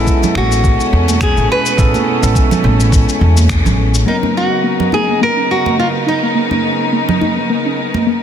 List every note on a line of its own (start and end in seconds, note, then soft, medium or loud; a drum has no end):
0.00 4.03 B2 medium
0.00 2.22 G#3 loud
0.00 4.03 A3 medium
0.00 1.78 B3 medium
0.00 1.78 C#4 medium
0.00 4.03 C#4 medium
0.00 0.38 E4 medium
0.00 1.79 E4 medium
0.00 1.77 G#4 medium
0.00 1.79 A4 loud
0.07 kick loud
0.07 shaker soft
0.23 low conga medium
0.23 shaker soft
0.35 0.75 A1 medium
0.35 1.23 F#4 loud
0.35 finger snap medium
0.35 high conga medium
0.52 shaker medium
0.64 kick loud
0.64 shaker medium
0.80 shaker soft
0.93 1.32 E2 medium
1.08 high conga medium
1.08 shaker medium
1.21 1.49 G#4 medium
1.21 finger snap medium
1.21 kick loud
1.21 shaker medium
1.37 1.47 A1 medium
1.37 shaker soft
1.52 3.47 B4 loud
1.66 shaker medium
1.77 1.91 A1 medium
1.77 2.19 B3 medium
1.77 2.19 C#4 medium
1.77 2.19 E4 medium
1.77 2.19 G#4 medium
1.77 2.19 A4 loud
1.77 kick loud
1.77 shaker medium
1.94 high conga medium
1.94 shaker soft
2.22 2.33 A1 medium
2.22 2.29 G#3 medium
2.22 2.29 B3 medium
2.22 2.30 C#4 medium
2.22 2.30 E4 medium
2.22 2.30 A4 medium
2.22 shaker medium
2.35 kick loud
2.35 shaker medium
2.51 low conga medium
2.51 shaker soft
2.64 3.03 A1 medium
2.64 high conga medium
2.80 shaker medium
2.92 kick loud
2.92 shaker soft
3.09 shaker soft
3.21 3.60 E2 medium
3.37 high conga medium
3.37 shaker medium
3.49 finger snap medium
3.49 kick loud
3.49 shaker medium
3.66 4.03 A1 medium
3.66 low conga medium
3.66 shaker soft
3.95 shaker medium
4.05 8.23 C#3 medium
4.05 8.23 F#3 medium
4.05 4.21 A#3 medium
4.05 8.23 B3 medium
4.05 8.23 C#4 medium
4.05 8.23 D#4 medium
4.05 4.16 D#4 medium
4.05 8.23 D#4 medium
4.05 8.23 A#4 medium
4.23 4.35 C#4 medium
4.23 high conga medium
4.37 4.95 F#4 medium
4.64 4.78 A#3 medium
4.80 low conga medium
4.92 5.07 D#4 medium
4.92 5.23 G#4 medium
4.92 high conga medium
5.08 5.20 A#3 medium
5.21 5.36 A#3 medium
5.21 5.49 A#4 medium
5.37 5.49 C#4 medium
5.51 5.79 F#4 medium
5.66 high conga medium
5.78 5.93 A#3 medium
5.78 5.87 F4 medium
6.06 6.21 D#4 medium
6.06 6.89 D#4 medium
6.23 6.34 A#3 medium
6.35 6.50 A#3 medium
6.51 6.63 C#4 medium
6.51 high conga medium
6.92 7.07 A#3 medium
7.09 low conga medium
7.21 7.35 D#4 medium
7.21 high conga medium
7.37 7.48 A#3 medium
7.50 7.64 A#3 medium
7.66 7.78 C#4 medium
7.94 high conga medium
8.07 8.21 A#3 medium